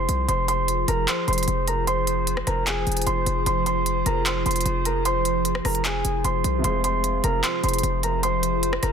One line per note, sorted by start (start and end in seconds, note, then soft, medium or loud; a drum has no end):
0.00 0.22 C3 medium
0.00 0.23 F3 medium
0.00 0.25 F3 medium
0.00 0.25 G#3 medium
0.00 0.25 F4 medium
0.00 0.26 F4 medium
0.00 0.25 G#4 medium
0.00 0.27 G#4 medium
0.00 0.25 C5 medium
0.00 0.27 C5 medium
0.00 0.26 C6 medium
0.09 0.28 C2 loud
0.09 closed hi-hat medium
0.28 0.86 F1 loud
0.28 8.92 F3 medium
0.28 8.92 F4 medium
0.28 8.92 G#4 medium
0.28 6.60 C5 medium
0.28 0.44 C5 medium
0.28 0.44 C6 medium
0.28 closed hi-hat medium
0.48 0.86 C5 medium
0.48 0.86 C6 medium
0.48 closed hi-hat medium
0.68 closed hi-hat medium
0.88 1.07 F1 loud
0.88 1.04 A#4 medium
0.88 1.03 A#5 medium
0.88 closed hi-hat medium
1.08 1.24 C5 medium
1.08 1.23 C6 medium
1.08 clap loud
1.08 closed hi-hat medium
1.28 1.47 F1 loud
1.28 1.66 C5 medium
1.28 1.65 C6 medium
1.28 closed hi-hat soft
1.33 closed hi-hat medium
1.38 closed hi-hat medium
1.43 closed hi-hat medium
1.48 2.43 F1 loud
1.48 closed hi-hat medium
1.67 1.83 A#4 medium
1.67 1.83 A#5 medium
1.67 closed hi-hat medium
1.87 2.44 C5 medium
1.87 2.43 C6 loud
1.87 closed hi-hat medium
2.07 closed hi-hat medium
2.27 closed hi-hat medium
2.37 cross-stick loud
2.47 2.85 F1 loud
2.47 2.63 A#4 medium
2.47 2.62 A#5 medium
2.47 cross-stick medium
2.47 closed hi-hat medium
2.67 3.05 G#4 medium
2.67 3.04 G#5 medium
2.67 clap loud
2.67 closed hi-hat medium
2.87 3.06 F1 loud
2.87 closed hi-hat soft
2.92 closed hi-hat medium
2.97 closed hi-hat medium
3.02 closed hi-hat medium
3.07 3.26 F1 loud
3.07 3.44 C5 medium
3.07 3.44 C6 medium
3.07 closed hi-hat medium
3.26 3.46 F1 loud
3.26 closed hi-hat medium
3.46 4.04 F1 loud
3.46 3.62 C5 medium
3.46 3.62 C6 medium
3.46 closed hi-hat medium
3.66 4.04 C5 medium
3.66 4.04 C6 medium
3.66 closed hi-hat medium
3.86 closed hi-hat medium
4.06 4.44 F1 loud
4.06 4.22 A#4 medium
4.06 4.21 A#5 medium
4.06 closed hi-hat medium
4.26 4.42 C5 medium
4.26 4.41 C6 medium
4.26 clap loud
4.26 closed hi-hat medium
4.46 4.65 F1 loud
4.46 4.84 C5 medium
4.46 4.83 C6 medium
4.46 closed hi-hat soft
4.51 closed hi-hat medium
4.56 closed hi-hat medium
4.61 closed hi-hat medium
4.65 5.61 F1 loud
4.65 closed hi-hat medium
4.85 5.01 A#4 medium
4.85 5.01 A#5 medium
4.85 closed hi-hat medium
5.05 5.62 C5 medium
5.05 5.61 C6 loud
5.05 closed hi-hat medium
5.25 closed hi-hat medium
5.45 closed hi-hat medium
5.55 cross-stick loud
5.65 6.03 F1 loud
5.65 5.81 A#4 medium
5.65 5.80 A#5 medium
5.65 cross-stick medium
5.65 closed hi-hat medium
5.65 open hi-hat medium
5.75 closed hi-hat medium
5.85 6.23 G#4 medium
5.85 6.22 G#5 medium
5.85 clap loud
5.85 closed hi-hat medium
6.05 6.24 F1 loud
6.05 closed hi-hat medium
6.24 6.44 F1 loud
6.24 6.62 C5 medium
6.24 6.62 C6 medium
6.24 closed hi-hat medium
6.44 6.63 C2 loud
6.44 closed hi-hat medium
6.59 8.92 C3 medium
6.59 8.92 F3 medium
6.64 7.21 F1 loud
6.64 8.92 G#3 medium
6.64 8.92 F4 medium
6.64 8.92 C5 medium
6.64 6.80 C5 medium
6.64 6.79 C6 medium
6.64 closed hi-hat medium
6.70 8.92 G#4 medium
6.84 7.22 C5 medium
6.84 7.21 C6 medium
6.84 closed hi-hat medium
7.04 closed hi-hat medium
7.24 7.43 F1 loud
7.24 7.39 A#4 medium
7.24 7.39 A#5 medium
7.24 closed hi-hat medium
7.43 7.59 C5 medium
7.43 7.59 C6 medium
7.43 clap loud
7.43 closed hi-hat medium
7.63 7.83 F1 loud
7.63 8.01 C5 medium
7.63 8.01 C6 medium
7.63 closed hi-hat soft
7.69 closed hi-hat medium
7.74 closed hi-hat medium
7.79 closed hi-hat medium
7.83 8.79 F1 loud
7.83 closed hi-hat medium
8.03 8.19 A#4 medium
8.03 8.19 A#5 medium
8.03 closed hi-hat medium
8.23 8.80 C5 medium
8.23 8.79 C6 loud
8.23 closed hi-hat medium
8.43 closed hi-hat medium
8.63 closed hi-hat medium
8.73 cross-stick loud
8.83 8.92 F1 loud
8.83 8.92 A#4 medium
8.83 8.92 A#5 medium
8.83 cross-stick medium
8.83 closed hi-hat medium